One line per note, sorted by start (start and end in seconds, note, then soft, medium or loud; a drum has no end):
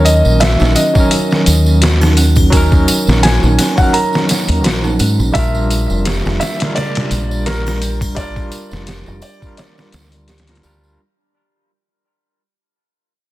0.00 0.21 D#2 medium
0.00 0.92 D#3 medium
0.00 0.89 F#3 medium
0.00 0.91 C#4 medium
0.00 0.93 A#4 loud
0.05 0.41 D#5 loud
0.05 closed hi-hat medium
0.05 tambourine medium
0.25 0.56 A#1 medium
0.25 tambourine soft
0.40 0.52 F#4 medium
0.40 0.77 E5 loud
0.40 snare loud
0.40 closed hi-hat medium
0.40 tambourine soft
0.59 0.74 A#1 loud
0.59 0.74 D#4 medium
0.59 snare medium
0.59 tambourine soft
0.75 0.94 C#4 medium
0.75 1.77 D#5 loud
0.75 closed hi-hat medium
0.75 tambourine medium
0.93 2.48 F#3 medium
0.93 2.49 C#4 medium
0.93 kick loud
0.93 tambourine soft
0.97 2.50 D#4 medium
0.97 2.51 A#4 medium
1.11 1.22 A#4 medium
1.11 closed hi-hat medium
1.11 tambourine medium
1.31 snare soft
1.31 tambourine soft
1.46 2.85 D#2 medium
1.46 closed hi-hat medium
1.46 tambourine loud
1.66 tambourine soft
1.82 1.93 F#4 medium
1.82 snare loud
1.82 closed hi-hat medium
1.82 tambourine soft
2.01 2.16 D#4 medium
2.01 snare medium
2.01 tambourine soft
2.01 triangle medium
2.17 2.36 C#4 medium
2.17 closed hi-hat medium
2.17 tambourine medium
2.35 kick loud
2.35 tambourine soft
2.35 triangle medium
2.50 3.72 F#3 loud
2.50 3.73 C#4 medium
2.50 2.64 A#4 medium
2.50 kick loud
2.50 closed hi-hat medium
2.50 tambourine medium
2.55 3.74 D#4 medium
2.55 3.75 A#4 loud
2.72 kick loud
2.72 tambourine soft
2.88 closed hi-hat medium
2.88 tambourine loud
3.07 3.38 A#1 medium
3.07 snare medium
3.07 tambourine soft
3.23 3.34 F#4 medium
3.23 3.79 G#5 medium
3.23 snare loud
3.23 closed hi-hat medium
3.23 tambourine soft
3.43 3.57 A#1 medium
3.43 3.57 D#4 medium
3.43 tambourine soft
3.58 3.77 C#4 medium
3.58 snare soft
3.58 closed hi-hat medium
3.58 tambourine medium
3.58 triangle medium
3.76 5.30 F#3 medium
3.76 5.31 C#4 medium
3.76 3.94 F#5 medium
3.76 kick loud
3.76 tambourine soft
3.80 5.32 D#4 medium
3.80 5.33 A#4 medium
3.93 4.05 A#4 medium
3.93 4.95 A#5 medium
3.93 closed hi-hat medium
3.93 tambourine medium
4.13 snare medium
4.13 tambourine soft
4.29 snare medium
4.29 closed hi-hat medium
4.29 tambourine medium
4.48 4.65 D#2 loud
4.48 closed hi-hat soft
4.48 tambourine soft
4.64 4.96 A#1 medium
4.64 4.75 F#4 medium
4.64 snare loud
4.64 closed hi-hat medium
4.64 tambourine soft
4.84 4.98 D#4 medium
4.84 tambourine soft
4.99 5.21 G#2 loud
4.99 5.18 C#4 medium
4.99 closed hi-hat medium
4.99 tambourine medium
5.20 5.33 A#1 loud
5.20 tambourine soft
5.32 5.86 A#1 medium
5.32 6.54 G3 medium
5.32 6.55 D4 medium
5.32 5.46 A#4 medium
5.32 6.38 E5 loud
5.32 kick loud
5.32 closed hi-hat medium
5.32 tambourine medium
5.37 6.56 F4 medium
5.37 6.58 A#4 loud
5.54 tambourine soft
5.70 closed hi-hat medium
5.70 tambourine medium
5.90 6.21 F1 medium
5.90 tambourine soft
6.05 6.17 G4 medium
6.05 snare loud
6.05 closed hi-hat medium
6.05 tambourine soft
6.25 6.39 F1 loud
6.25 6.39 F4 medium
6.25 snare medium
6.25 tambourine soft
6.40 6.59 D4 medium
6.40 6.73 E5 loud
6.40 snare loud
6.40 closed hi-hat medium
6.40 tambourine medium
6.58 8.12 G3 medium
6.58 8.13 D4 medium
6.58 closed hi-hat medium
6.58 tambourine soft
6.62 8.14 F4 medium
6.62 8.15 A#4 loud
6.62 snare loud
6.75 6.87 A#4 medium
6.75 7.42 D5 loud
6.75 snare loud
6.75 closed hi-hat medium
6.75 tambourine soft
6.95 snare loud
6.95 closed hi-hat medium
6.95 tambourine soft
7.11 8.49 A#1 medium
7.11 closed hi-hat medium
7.11 tambourine medium
7.31 tambourine soft
7.46 7.57 G4 medium
7.46 7.97 A#4 medium
7.46 snare loud
7.46 closed hi-hat medium
7.46 tambourine soft
7.66 7.80 F4 medium
7.66 snare soft
7.66 tambourine soft
7.66 triangle medium
7.82 8.00 D4 medium
7.82 closed hi-hat medium
7.82 tambourine medium
8.01 kick loud
8.01 tambourine soft
8.01 triangle medium
8.15 9.37 G3 medium
8.15 9.38 D4 medium
8.15 8.28 A#4 medium
8.15 9.21 D5 loud
8.15 kick loud
8.15 closed hi-hat medium
8.15 tambourine medium
8.19 9.39 F4 medium
8.19 9.40 A#4 loud
8.36 kick medium
8.36 tambourine soft
8.52 closed hi-hat medium
8.52 tambourine medium
8.71 9.03 F1 medium
8.71 snare medium
8.71 tambourine soft
8.87 8.99 G4 medium
8.87 snare loud
8.87 closed hi-hat medium
8.87 tambourine soft
9.06 9.21 F1 loud
9.06 9.21 F4 medium
9.06 tambourine soft
9.22 9.41 D4 medium
9.22 9.57 D5 loud
9.22 closed hi-hat medium
9.22 tambourine medium
9.22 triangle medium
9.40 10.43 G3 medium
9.40 10.44 D4 medium
9.40 kick loud
9.40 tambourine soft
9.44 10.45 F4 medium
9.44 10.46 A#4 medium
9.57 9.69 A#4 medium
9.57 10.60 D5 medium
9.57 snare loud
9.57 closed hi-hat medium
9.57 tambourine soft
9.78 snare medium
9.78 tambourine soft
9.92 10.61 D2 loud
9.92 snare loud
9.92 closed hi-hat medium
9.92 tambourine medium
10.12 closed hi-hat soft
10.12 tambourine soft
10.28 10.40 G4 medium
10.28 snare medium
10.28 closed hi-hat medium
10.28 tambourine soft
10.38 snare medium
10.38 closed hi-hat medium
10.47 10.60 G3 medium
10.47 10.61 D4 medium
10.47 10.62 F4 medium
10.47 10.61 F4 medium
10.47 10.62 A#4 medium
10.47 snare medium
10.47 closed hi-hat medium
10.47 tambourine soft
10.55 snare medium
10.55 closed hi-hat medium
10.63 10.96 D2 loud
10.63 10.95 G3 loud
10.63 10.82 D4 medium
10.63 10.96 D4 medium
10.63 10.96 F4 medium
10.63 10.97 A#4 loud
10.63 closed hi-hat medium
10.63 tambourine medium
10.83 tambourine soft